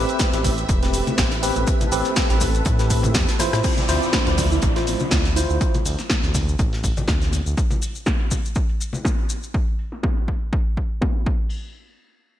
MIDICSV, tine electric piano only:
0, 0, Header, 1, 2, 480
1, 0, Start_track
1, 0, Key_signature, -1, "minor"
1, 0, Tempo, 491803
1, 1634, Time_signature, 4, 2, 24, 8
1, 12101, End_track
2, 0, Start_track
2, 0, Title_t, "Tine electric piano"
2, 0, Program_c, 0, 4
2, 0, Note_on_c, 0, 60, 97
2, 0, Note_on_c, 0, 67, 88
2, 0, Note_on_c, 0, 71, 106
2, 293, Note_off_c, 0, 60, 0
2, 294, Note_off_c, 0, 67, 0
2, 295, Note_off_c, 0, 71, 0
2, 324, Note_on_c, 0, 60, 80
2, 326, Note_on_c, 0, 67, 73
2, 329, Note_on_c, 0, 71, 84
2, 492, Note_off_c, 0, 60, 0
2, 493, Note_off_c, 0, 67, 0
2, 494, Note_off_c, 0, 71, 0
2, 803, Note_on_c, 0, 60, 81
2, 805, Note_on_c, 0, 67, 78
2, 807, Note_on_c, 0, 71, 92
2, 1126, Note_off_c, 0, 60, 0
2, 1127, Note_off_c, 0, 67, 0
2, 1128, Note_off_c, 0, 71, 0
2, 1151, Note_on_c, 0, 60, 77
2, 1154, Note_on_c, 0, 67, 68
2, 1156, Note_on_c, 0, 72, 83
2, 1272, Note_off_c, 0, 60, 0
2, 1273, Note_off_c, 0, 67, 0
2, 1275, Note_off_c, 0, 72, 0
2, 1391, Note_on_c, 0, 60, 103
2, 1394, Note_on_c, 0, 67, 87
2, 1396, Note_on_c, 0, 71, 112
2, 1846, Note_off_c, 0, 60, 0
2, 1848, Note_off_c, 0, 67, 0
2, 1849, Note_off_c, 0, 71, 0
2, 1872, Note_on_c, 0, 60, 95
2, 1874, Note_on_c, 0, 67, 91
2, 1876, Note_on_c, 0, 71, 106
2, 2213, Note_off_c, 0, 60, 0
2, 2214, Note_off_c, 0, 67, 0
2, 2216, Note_off_c, 0, 71, 0
2, 2243, Note_on_c, 0, 60, 80
2, 2246, Note_on_c, 0, 67, 73
2, 2248, Note_on_c, 0, 71, 86
2, 2412, Note_off_c, 0, 60, 0
2, 2413, Note_off_c, 0, 67, 0
2, 2414, Note_off_c, 0, 71, 0
2, 2724, Note_on_c, 0, 60, 84
2, 2726, Note_on_c, 0, 67, 74
2, 2728, Note_on_c, 0, 71, 92
2, 3047, Note_off_c, 0, 60, 0
2, 3048, Note_off_c, 0, 67, 0
2, 3049, Note_off_c, 0, 71, 0
2, 3072, Note_on_c, 0, 60, 75
2, 3074, Note_on_c, 0, 67, 69
2, 3075, Note_on_c, 0, 72, 81
2, 3192, Note_off_c, 0, 60, 0
2, 3193, Note_off_c, 0, 67, 0
2, 3194, Note_off_c, 0, 72, 0
2, 3312, Note_on_c, 0, 64, 97
2, 3314, Note_on_c, 0, 65, 90
2, 3317, Note_on_c, 0, 72, 105
2, 3767, Note_off_c, 0, 64, 0
2, 3768, Note_off_c, 0, 65, 0
2, 3769, Note_off_c, 0, 72, 0
2, 3792, Note_on_c, 0, 64, 93
2, 3794, Note_on_c, 0, 65, 83
2, 3797, Note_on_c, 0, 72, 104
2, 4133, Note_off_c, 0, 64, 0
2, 4135, Note_off_c, 0, 65, 0
2, 4136, Note_off_c, 0, 72, 0
2, 4165, Note_on_c, 0, 64, 74
2, 4167, Note_on_c, 0, 65, 69
2, 4169, Note_on_c, 0, 72, 82
2, 4332, Note_off_c, 0, 64, 0
2, 4333, Note_off_c, 0, 65, 0
2, 4335, Note_off_c, 0, 72, 0
2, 4645, Note_on_c, 0, 64, 80
2, 4647, Note_on_c, 0, 65, 75
2, 4649, Note_on_c, 0, 72, 85
2, 4967, Note_off_c, 0, 64, 0
2, 4968, Note_off_c, 0, 65, 0
2, 4969, Note_off_c, 0, 72, 0
2, 4992, Note_on_c, 0, 64, 74
2, 4995, Note_on_c, 0, 65, 66
2, 4996, Note_on_c, 0, 74, 83
2, 5113, Note_off_c, 0, 64, 0
2, 5114, Note_off_c, 0, 65, 0
2, 5115, Note_off_c, 0, 74, 0
2, 5232, Note_on_c, 0, 64, 90
2, 5233, Note_on_c, 0, 65, 89
2, 5236, Note_on_c, 0, 72, 102
2, 5687, Note_off_c, 0, 64, 0
2, 5688, Note_off_c, 0, 65, 0
2, 5689, Note_off_c, 0, 72, 0
2, 12101, End_track
0, 0, End_of_file